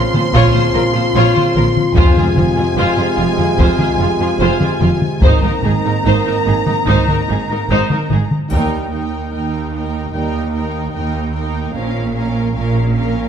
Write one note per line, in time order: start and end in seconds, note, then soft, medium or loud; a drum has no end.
0.00 1.80 C#3 medium
0.00 1.80 F3 medium
0.00 5.04 C4 medium
0.00 5.04 F4 medium
0.00 1.96 C6 medium
0.13 0.21 A#2 medium
0.13 0.22 F4 medium
0.13 0.22 C5 medium
0.13 taiko mid soft
0.33 0.41 A#1 medium
0.33 0.42 A#2 medium
0.33 0.53 F4 medium
0.33 0.54 C#5 medium
0.33 taiko medium
0.53 0.62 A#2 medium
0.53 0.62 F4 medium
0.53 0.61 C5 medium
0.53 taiko mid soft
0.74 0.82 A#1 medium
0.74 0.83 A#2 medium
0.74 0.82 F4 medium
0.74 0.82 A#4 medium
0.93 1.03 A#2 medium
0.93 1.01 F4 medium
0.93 1.03 C5 medium
1.14 1.22 A#1 medium
1.14 1.23 A#2 medium
1.14 1.33 F4 medium
1.14 1.34 C#5 medium
1.34 1.44 A#2 medium
1.34 1.42 F4 medium
1.34 1.44 C5 medium
1.34 taiko mid soft
1.55 1.63 A#1 medium
1.55 1.65 A#2 medium
1.55 1.63 F4 medium
1.55 1.63 A#4 medium
1.55 taiko mid medium
1.77 taiko mid medium
1.95 2.03 F1 medium
1.95 3.14 F2 medium
1.95 2.05 F2 medium
1.95 5.18 C3 medium
1.95 5.19 G#3 medium
1.95 2.14 F4 medium
1.95 2.15 C5 medium
1.95 5.22 G#5 medium
1.95 taiko loud
2.15 2.27 F2 medium
2.15 2.23 F4 medium
2.15 2.25 G#4 soft
2.15 taiko mid medium
2.36 2.44 F1 medium
2.36 2.45 F2 medium
2.36 2.44 F4 soft
2.36 2.45 F4 soft
2.36 taiko mid medium
2.56 2.66 F2 medium
2.56 2.64 F4 medium
2.56 2.64 G#4 medium
2.76 2.84 F1 medium
2.76 2.86 F2 medium
2.76 2.97 F4 medium
2.76 2.96 C5 medium
2.95 3.06 F2 medium
2.95 3.03 G#4 medium
2.99 3.07 F4 medium
3.16 3.26 F1 medium
3.16 3.27 F2 medium
3.16 3.24 F4 medium
3.16 3.25 F4 soft
3.37 3.46 F2 medium
3.37 3.46 F4 medium
3.37 3.45 G#4 soft
3.37 taiko mid medium
3.57 3.65 F1 medium
3.57 3.67 F2 medium
3.57 3.78 F4 medium
3.57 3.77 C5 medium
3.57 taiko medium
3.79 3.87 F2 medium
3.79 3.88 F4 medium
3.79 3.87 G#4 medium
3.79 taiko mid soft
3.98 4.06 F1 medium
3.98 4.08 F2 medium
3.98 4.07 F4 soft
3.98 4.09 F4 medium
4.20 4.28 F2 medium
4.20 4.29 F4 medium
4.20 4.28 G#4 medium
4.39 4.47 F1 medium
4.39 4.48 F2 medium
4.39 4.60 F4 medium
4.39 4.59 C5 medium
4.60 4.68 F2 medium
4.60 4.71 F4 medium
4.60 4.69 G#4 medium
4.60 taiko mid soft
4.80 4.89 F1 medium
4.80 4.89 F2 medium
4.80 4.88 F4 medium
4.80 4.91 F4 medium
4.80 taiko mid medium
5.02 taiko mid medium
5.21 5.30 G#1 medium
5.21 5.31 G#2 medium
5.21 8.19 D#3 medium
5.21 8.15 A#3 medium
5.21 8.15 C4 medium
5.21 8.15 D#4 medium
5.21 5.43 D#4 medium
5.21 5.42 C5 medium
5.21 8.31 A#5 medium
5.21 taiko loud
5.43 5.51 G#2 medium
5.43 5.52 D#4 soft
5.43 5.52 A#4 soft
5.43 taiko mid medium
5.63 5.72 G#1 medium
5.63 5.72 G#2 medium
5.63 5.73 D#4 soft
5.63 5.72 G#4 medium
5.63 taiko mid medium
5.84 5.93 G#2 medium
5.84 5.92 D#4 soft
5.84 5.94 A#4 medium
6.04 6.13 G#1 medium
6.04 6.13 G#2 medium
6.04 6.24 D#4 medium
6.04 6.25 C5 medium
6.25 6.33 G#2 soft
6.25 6.34 D#4 soft
6.25 6.35 A#4 soft
6.46 6.54 G#1 soft
6.46 6.54 G#2 medium
6.46 6.54 D#4 soft
6.46 6.56 G#4 soft
6.66 6.75 G#2 soft
6.66 6.74 D#4 medium
6.66 6.76 A#4 soft
6.66 taiko mid soft
6.86 6.95 G#1 medium
6.86 6.94 G#2 medium
6.86 7.05 D#4 medium
6.86 7.07 C5 medium
6.86 taiko medium
7.06 7.16 G#2 soft
7.06 7.14 D#4 medium
7.06 7.17 A#4 medium
7.06 taiko mid soft
7.28 7.37 G#1 medium
7.28 7.37 G#2 medium
7.28 7.36 D#4 soft
7.28 7.39 G#4 soft
7.50 7.58 G#2 medium
7.50 7.58 D#4 soft
7.50 7.59 A#4 medium
7.69 7.77 G#1 medium
7.69 7.78 G#2 medium
7.69 7.89 D#4 medium
7.69 7.89 C5 medium
7.90 7.98 G#2 medium
7.90 7.98 D#4 soft
7.90 8.00 A#4 medium
7.90 taiko mid medium
8.10 8.19 G#1 medium
8.10 8.19 G#2 medium
8.10 8.18 D#4 medium
8.10 8.20 G#4 medium
8.10 taiko mid medium
8.31 taiko mid soft
8.48 9.21 D#2 medium
8.48 8.89 D#3 medium
8.48 8.89 G3 medium
8.48 8.88 A#3 soft
8.48 8.87 D#4 soft
8.48 8.89 D#4 medium
8.48 8.88 G5 soft
8.48 taiko soft
8.48 triangle soft
8.52 8.90 A#4 medium
8.92 9.31 D#4 soft
8.92 9.32 A#4 soft
8.92 9.31 G5 soft
9.33 10.04 D#2 soft
9.33 10.05 D#2 soft
9.33 9.71 D#4 soft
9.33 9.73 A#4 soft
9.33 9.72 G5 soft
9.73 10.12 D#4 soft
9.73 10.13 A#4 soft
9.73 10.11 G5 soft
10.12 10.85 D#2 soft
10.12 10.42 D#3 soft
10.12 10.43 G3 soft
10.12 10.43 A#3 soft
10.12 10.43 D#4 soft
10.12 10.53 D#4 soft
10.12 10.52 A#4 soft
10.12 10.52 G5 soft
10.53 10.94 D#4 soft
10.53 10.93 A#4 soft
10.53 10.91 G5 soft
10.92 11.65 D#2 soft
10.92 11.66 D#2 soft
10.92 11.33 D#4 soft
10.92 11.34 A#4 soft
10.92 11.31 G5 soft
11.32 11.74 D#4 soft
11.32 11.74 A#4 soft
11.32 11.73 G5 soft
11.74 12.46 A#1 soft
11.74 12.04 A#2 soft
11.74 12.46 A#2 soft
11.74 12.05 F3 soft
11.74 12.05 A#3 soft
11.74 12.13 C#4 soft
11.74 12.05 C#4 soft
11.74 12.14 A#4 soft
11.74 12.14 F5 soft
12.14 12.53 C#4 soft
12.14 12.55 A#4 soft
12.14 12.52 F5 soft
12.54 13.27 A#1 soft
12.54 13.27 A#2 medium
12.54 12.93 C#4 soft
12.54 12.95 A#4 soft
12.54 12.92 F5 soft
12.93 13.29 C#4 soft
12.93 13.29 A#4 soft
12.93 13.29 F5 soft